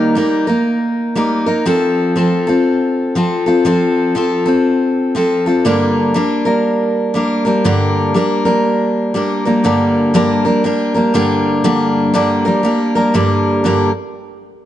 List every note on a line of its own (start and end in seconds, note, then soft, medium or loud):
0.00 0.16 D#3 medium
0.00 0.14 G3 medium
0.00 0.15 A#3 medium
0.00 0.16 D#4 medium
0.00 0.17 A#4 medium
0.15 0.47 G3 medium
0.15 0.47 A#3 medium
0.15 0.47 D#4 medium
0.15 0.46 A#4 medium
0.47 1.15 A#3 soft
0.47 1.16 D#4 medium
0.47 1.16 A#4 medium
1.15 1.47 G3 medium
1.15 1.47 A#3 medium
1.15 1.46 D#4 medium
1.15 1.45 A#4 medium
1.46 1.66 A#3 soft
1.46 1.66 D#4 medium
1.46 1.66 A#4 medium
1.66 2.14 F3 medium
1.66 2.15 C4 medium
1.66 2.16 F4 medium
1.66 2.17 A4 medium
2.16 2.47 F3 medium
2.16 2.47 C4 medium
2.16 2.47 F4 medium
2.16 2.46 A4 medium
2.47 3.15 C4 medium
2.47 3.16 F4 medium
2.47 3.16 A4 medium
3.15 3.47 F3 medium
3.15 3.47 C4 medium
3.15 3.46 F4 medium
3.15 3.45 A4 medium
3.46 3.64 C4 medium
3.46 3.65 F4 medium
3.46 3.66 A4 medium
3.65 4.14 F3 medium
3.65 4.15 C4 medium
3.65 4.15 F4 medium
3.65 4.16 A4 medium
4.15 4.46 F3 medium
4.15 4.47 C4 medium
4.15 4.46 F4 medium
4.15 4.44 A4 medium
4.46 5.14 C4 soft
4.46 5.15 F4 medium
4.46 5.15 A4 medium
5.15 5.46 F3 medium
5.15 5.47 C4 medium
5.15 5.46 F4 medium
5.15 5.45 A4 medium
5.46 5.65 C4 soft
5.46 5.66 F4 medium
5.46 5.65 A4 medium
5.65 6.15 G2 medium
5.65 6.15 D3 medium
5.65 6.14 G3 medium
5.65 6.15 A#3 medium
5.65 6.15 D4 medium
5.65 6.16 A#4 medium
6.14 6.46 G3 medium
6.14 6.46 A#3 medium
6.14 6.45 D4 medium
6.14 6.44 A#4 medium
6.45 7.13 G3 soft
6.45 7.15 A#3 soft
6.45 7.15 D4 medium
6.45 7.16 A#4 medium
7.14 7.46 G3 medium
7.14 7.45 A#3 medium
7.14 7.45 D4 medium
7.14 7.44 A#4 medium
7.45 7.64 G3 soft
7.45 7.64 A#3 medium
7.45 7.64 D4 medium
7.45 7.65 A#4 medium
7.64 8.15 G2 medium
7.64 8.15 D3 medium
7.64 8.13 G3 medium
7.64 8.14 A#3 medium
7.64 8.15 D4 medium
7.64 8.16 A#4 loud
8.14 8.46 G3 medium
8.14 8.45 A#3 medium
8.14 8.45 D4 medium
8.14 8.44 A#4 medium
8.45 9.13 G3 soft
8.45 9.14 A#3 medium
8.45 9.15 D4 medium
8.45 9.15 A#4 medium
9.14 9.46 G3 medium
9.14 9.46 A#3 medium
9.14 9.45 D4 medium
9.14 9.44 A#4 medium
9.45 9.63 G3 soft
9.45 9.64 A#3 medium
9.45 9.64 D4 soft
9.45 9.64 A#4 medium
9.64 10.13 G2 medium
9.64 10.13 D3 medium
9.64 10.14 G3 medium
9.64 10.14 A#3 medium
9.64 10.15 D4 medium
9.64 10.15 A#4 medium
10.14 10.45 G2 medium
10.14 10.46 D3 medium
10.14 10.46 G3 loud
10.14 10.45 A#3 medium
10.14 10.44 D4 medium
10.14 10.44 A#4 medium
10.45 10.63 G3 soft
10.45 10.63 A#3 soft
10.45 10.64 D4 medium
10.45 10.64 A#4 medium
10.64 10.95 G3 medium
10.64 10.95 A#3 medium
10.64 10.94 D4 medium
10.64 10.93 A#4 medium
10.94 11.13 G3 soft
10.94 11.14 A#3 medium
10.94 11.14 D4 medium
10.94 11.14 A#4 medium
11.14 11.63 G2 medium
11.14 11.63 D3 medium
11.14 11.64 G3 medium
11.14 11.64 A#3 medium
11.14 11.65 D4 loud
11.14 11.65 A#4 medium
11.64 12.12 G2 medium
11.64 12.13 D3 medium
11.64 12.13 G3 medium
11.64 12.14 A#3 medium
11.64 12.14 D4 medium
11.64 12.14 A#4 medium
12.14 12.45 G2 medium
12.14 12.46 D3 medium
12.14 12.46 G3 medium
12.14 12.46 A#3 medium
12.14 12.45 D4 medium
12.14 12.44 A#4 medium
12.45 12.62 G3 soft
12.45 12.63 A#3 soft
12.45 12.64 D4 medium
12.45 12.64 A#4 medium
12.63 12.95 G3 medium
12.63 12.96 A#3 medium
12.63 12.95 D4 medium
12.63 12.94 A#4 medium
12.95 13.13 G3 soft
12.95 13.14 A#3 medium
12.95 13.14 D4 soft
12.95 13.14 A#4 medium
13.14 13.63 G2 medium
13.14 13.64 D3 medium
13.14 13.64 G3 medium
13.14 13.65 A#3 medium
13.14 13.65 D4 medium
13.14 13.65 A#4 medium
13.64 13.89 G2 medium
13.64 13.90 D3 medium
13.64 13.90 G3 medium
13.64 13.90 A#3 medium
13.64 13.90 D4 medium
13.64 13.91 A#4 medium